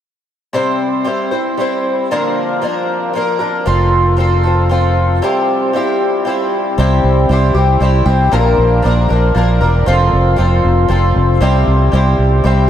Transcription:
0.53 C3 G3 C4 E4 C5
1.04 G3 C4 E4 C5
1.31 C4 E4 C5
1.57 G3 C4 E4 C5
2.11 A#2 D3 F3 A#3 D4 A#4
2.62 F3 A#3 D4 A#4
3.13 F3 A#3 D4 A#4
3.39 F3 A#3 D4 A#4
3.66 F1 F3 C4 F4 A4
4.17 F3 C4 F4 A4
4.43 C4 F4 A4
4.69 F3 C4 F4 A4
5.22 C3 G3 C4 E4 G4
5.73 G3 C4 E4 G4
6.25 G3 C4 E4 G4
6.78 C2 C3 G3 C4 E4 G4
7.04 C2
7.29 C2 G3 C4 E4 G4
7.54 C2 C4 E4 G4
7.80 C2 G3 C4 E4 G4
8.06 C2 C4 E4 G4
8.32 A#1 A#2 D3 F3 A#3 D4 A#4
8.58 A#1
8.82 A#1 F3 A#3 D4 A#4
9.09 A#1 F3 A#3 D4 A#4
9.35 A#1 F3 A#3 D4 A#4
9.61 E1 F3 A#3 D4 A#4
9.86 F1 F3 C4 F4 A4
10.13 F1
10.36 F1 F3 C4 F4 A4
10.65 F1
10.88 F1 F3 C4 F4 A4
11.16 F1
11.41 C2 C3 G3 C4 E4 G4
11.68 C2
11.92 C2 G3 C4 E4 G4
12.19 C2
12.44 C2 G3 C4 E4 G4

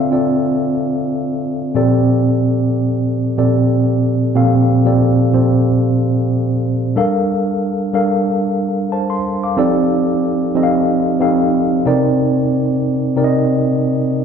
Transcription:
Already playing: D3 C4 F4 A4 D5 E5 F5
0.11 D3 C4 F4 A4 D5
1.74 A#2 F3 C4 G4 A4 D5
3.37 A#2 F3 C4 G4 A4 D5
4.35 A#2 F3 C4 G4 A4 F5
4.85 A#2 F3 C4 G4 A4 D5
5.32 A#2 F3 C4 G4 A4 C5
6.96 G3 D4 A4 A#4 F5
7.93 G3 D4 A4 A#4 F5
8.92 C5 A5
9.10 C6
9.43 F5 D6
9.57 F3 C4 D#4 G4 A4 D5
10.55 F3 C4 D#4 G4 A4 D#5
10.63 F5
11.20 F3 C4 D#4 G4 A4 F5
11.85 C3 C4 D#4 A#4 D5
13.16 C3 C4 D#4 A#4 D5
13.24 D#5

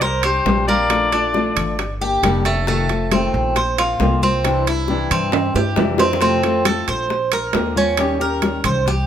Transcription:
Already playing: C2
0.01 A#4 C5, muted nylon-string guitar stroke, high bongo, high conga, high timbale
0.23 C4 D4 G4 C5, high bongo, high conga, high timbale
0.46 A#1 C3 G3 C4 D4 G4, high bongo, low bongo, high conga, low timbale
0.67 A#3 C4 D4 G4 D5, high bongo, high conga
0.89 F3 A3 D4 F4, high bongo, high conga, high timbale
1.12 A3 D4 F4, high bongo, high conga, high timbale
1.34 F3 A3 D4 F4, high bongo, high conga
1.56 G1, high conga, low conga, high timbale
1.79 muted nylon-string guitar stroke, high bongo, high conga, high timbale
2.01 A#3 D4 G4, high bongo, high conga
2.23 F1 D3 G3 A#3 D4 G4, high bongo, low bongo, high conga, high timbale
2.45 A3 A#3 D4 G4, high bongo, high conga, high timbale
2.67 C3 D#3 A3 C4 F4, high bongo, high conga
2.89 A3 C4 F4, high bongo, high conga, high timbale
3.12 C3 D#3 A3 C4 F4, high bongo, high conga, high timbale
3.34 A#1, high conga
3.56 C5, muted nylon-string guitar stroke, high bongo, high conga, high timbale
3.78 A#3 C4 F4, high bongo, high conga, high timbale
4.00 C2 D3 A#3 C4 F4, high bongo, low bongo, high conga, low timbale
4.22 A#3 C4 F4, high bongo, high conga
4.44 C3 E3 G3 D4 E4, high bongo, high conga, high timbale
4.67 G3 D4 E4, high bongo, high conga, high timbale
4.88 C3 E3 G3 D4 E4, high bongo, high conga
5.11 G2 C4, high conga, low conga, high timbale
5.32 muted nylon-string guitar stroke, high bongo, high conga, low conga, high timbale
5.54 G2 G3 D4 E4 G4, high bongo, high conga, low timbale
5.76 F2 C3 E3 G3 D4 E4, high bongo, low bongo, high conga, low timbale
5.98 G3 C4 D4 E4, high bongo, high conga, low timbale
6.13 low bongo
6.21 C3 F3 A3 C4 F4, high bongo, high conga, high timbale
6.43 F3 A3 C4 F4, high bongo, high conga, high timbale
6.65 F3 A3 C4 F4 A4, high bongo, high conga, high timbale, low timbale
6.88 A#1 C5, high bongo, high conga, high timbale
7.10 muted nylon-string guitar stroke, high bongo, high conga
7.32 A#4, high bongo, high conga, high timbale
7.53 D#2 D3 A#3 C4 F4, high bongo, low bongo, high conga, high timbale, low timbale
7.76 A#3 C4 C#4 F4, high conga
7.97 D#3 G3 C#4 G4, high bongo, high conga, high timbale
8.20 G3 C#4 G4 A#4, high conga
8.42 D#3 G3 C#4 G4, high bongo, high conga, high timbale, low timbale
8.64 C2 C5, high bongo, high conga, low conga, high timbale
8.87 G4, muted nylon-string guitar stroke, high bongo, high conga, low conga

